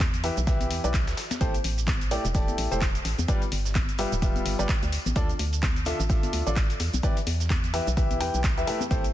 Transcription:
Already playing: E2
0.00 kick, snare, clap, closed hi-hat, tambourine, high conga, cabasa
0.14 closed hi-hat, tambourine, cabasa
0.24 E3 E4 G4 B4 E5, closed hi-hat, open hi-hat, tambourine
0.37 B1, closed hi-hat, tambourine, cabasa
0.47 E3 E4 G4 B4 E5, kick, snare, closed hi-hat, tambourine, cabasa
0.60 closed hi-hat, tambourine, high conga, cabasa
0.70 E2, closed hi-hat, open hi-hat, tambourine
0.84 B1 E3 E4 G4 B4 D5, closed hi-hat, tambourine, cabasa
0.94 kick, snare, clap, closed hi-hat, tambourine, cabasa
1.07 D2, snare, closed hi-hat, tambourine, cabasa
1.17 snare, closed hi-hat, open hi-hat, tambourine
1.31 snare, closed hi-hat, tambourine, high conga, cabasa
1.41 A1 A3 E4 G4 A4 C5, kick, closed hi-hat, tambourine, cabasa
1.54 closed hi-hat, tambourine, cabasa
1.64 A1, closed hi-hat, open hi-hat, tambourine
1.78 closed hi-hat, tambourine, cabasa
1.87 kick, snare, clap, closed hi-hat, tambourine, high conga, cabasa
2.01 closed hi-hat, tambourine, cabasa
2.11 A3 E4 G4 A4 D5, closed hi-hat, open hi-hat, tambourine
2.25 E1, closed hi-hat, tambourine, cabasa
2.35 A3 E4 G4 A4 D5, kick, closed hi-hat, open hi-hat, tambourine, cabasa
2.48 closed hi-hat, tambourine, high conga, cabasa
2.58 A1, closed hi-hat, open hi-hat, tambourine
2.72 E1 A3 E4 G4 A4 C5, closed hi-hat, cabasa
2.81 kick, snare, clap, closed hi-hat, tambourine, cabasa
2.95 closed hi-hat, tambourine, cabasa
3.05 A1, snare, closed hi-hat, open hi-hat, tambourine
3.18 E2, closed hi-hat, tambourine, high conga, cabasa
3.28 G3 F4 G4 B4 D5, kick, closed hi-hat, tambourine, cabasa
3.42 closed hi-hat, tambourine, cabasa
3.52 G1, closed hi-hat, open hi-hat, tambourine
3.65 snare, tambourine, cabasa
3.75 kick, snare, clap, closed hi-hat, tambourine, high conga, cabasa
3.89 closed hi-hat, tambourine, cabasa
3.98 G3 F4 G4 B4 E5, closed hi-hat, open hi-hat, tambourine
4.12 D1, closed hi-hat, tambourine, cabasa
4.22 G3 F4 G4 B4 E5, kick, closed hi-hat, tambourine, cabasa
4.36 closed hi-hat, tambourine, high conga, cabasa
4.46 G1, closed hi-hat, open hi-hat, tambourine
4.59 G1 G3 F4 G4 B4 D5, closed hi-hat, tambourine, cabasa
4.69 kick, snare, clap, closed hi-hat, tambourine, cabasa
4.82 D2, closed hi-hat, tambourine, cabasa
4.92 closed hi-hat, open hi-hat, tambourine
5.06 A1, closed hi-hat, tambourine, high conga, cabasa
5.16 D2 D3 D4 F4 A4 D5, kick, closed hi-hat, tambourine, cabasa
5.29 closed hi-hat, tambourine, cabasa
5.39 D2, closed hi-hat, open hi-hat, tambourine
5.53 closed hi-hat, tambourine, cabasa
5.63 kick, snare, clap, closed hi-hat, tambourine, high conga, cabasa
5.76 closed hi-hat, tambourine, cabasa
5.85 D3 D4 F4 A4 E5, closed hi-hat, open hi-hat, tambourine
6.00 A1, closed hi-hat, tambourine, cabasa
6.09 D3 D4 F4 A4 E5, kick, closed hi-hat, open hi-hat, tambourine, cabasa
6.23 closed hi-hat, tambourine, high conga, cabasa
6.33 D2, closed hi-hat, open hi-hat, tambourine
6.47 A1 D3 D4 F4 A4 D5, closed hi-hat, tambourine, cabasa
6.56 kick, snare, clap, closed hi-hat, tambourine, cabasa
6.70 closed hi-hat, tambourine, cabasa
6.80 E2, snare, closed hi-hat, open hi-hat, tambourine
6.93 B1, closed hi-hat, tambourine, high conga, cabasa
7.03 E3 E4 G4 B4 D5, kick, closed hi-hat, tambourine, cabasa
7.17 closed hi-hat, tambourine, cabasa
7.27 E2, closed hi-hat, open hi-hat, tambourine
7.40 snare, closed hi-hat, tambourine, cabasa
7.50 kick, snare, clap, closed hi-hat, tambourine, high conga, cabasa
7.63 closed hi-hat, tambourine, cabasa
7.74 E3 E4 G4 B4 E5, closed hi-hat, open hi-hat, tambourine
7.86 B1, closed hi-hat, tambourine, cabasa
7.97 E3 E4 G4 B4 E5, kick, closed hi-hat, tambourine, cabasa
8.10 closed hi-hat, tambourine, high conga, cabasa
8.20 E2 E3 E4 G4 B4 G5, closed hi-hat, open hi-hat, tambourine
8.34 B1, closed hi-hat, tambourine, cabasa
8.44 kick, snare, clap, closed hi-hat, tambourine, cabasa
8.57 D2 E3 E4 G4 B4 E5, closed hi-hat, tambourine, cabasa
8.67 A3 E4 G4 B4 E5, closed hi-hat, open hi-hat, tambourine
8.80 closed hi-hat, tambourine, high conga, cabasa
8.91 A1 A3 E4 G4 A4 C5, kick, closed hi-hat, tambourine, cabasa
9.04 closed hi-hat, tambourine, cabasa

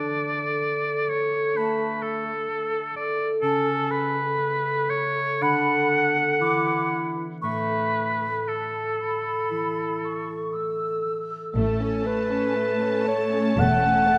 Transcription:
Already playing: D3 A3 D4 A4 D5 A5
0.16 A3
0.38 A4
0.61 A3
0.85 A4
1.08 A3 C#5
1.31 A4
1.54 A3 D4 B4 A5
1.78 A4
2.02 A3 A4
2.24 A4
2.48 A3
2.71 A4
2.94 A3 D5
3.18 A4
3.42 C#3 C#4 A4 A5
3.64 A4
3.89 A3 B4
4.14 A4
4.38 A3
4.62 A4
4.88 A3 C#5
5.15 A4
5.41 D3 D4 F#5 B5
5.67 A4
5.92 B3
6.17 A4
6.41 E3 E4 D6
6.66 B4
6.91 D4
7.16 B4
7.42 A2 A3 B4 C#6
7.69 A4
7.95 A3
8.21 A4
8.47 A3 A4 A5
8.73 A4
9.00 A3 B5
9.51 E3 E4
9.77 A4
10.03 A3 C#6
10.28 A4
10.52 A3 E6
10.79 A4
11.06 A3
11.31 A4
11.56 A1 A2 A3 A4 A5
11.80 C#4 A4
12.05 A3 B4
12.30 C#4 A4
12.55 A3
12.81 C#4 A4
13.07 A3 C#5
13.32 C#4 A4
13.59 E1 E2 E3 A3 F#5
13.83 C#4 A4
14.08 A3

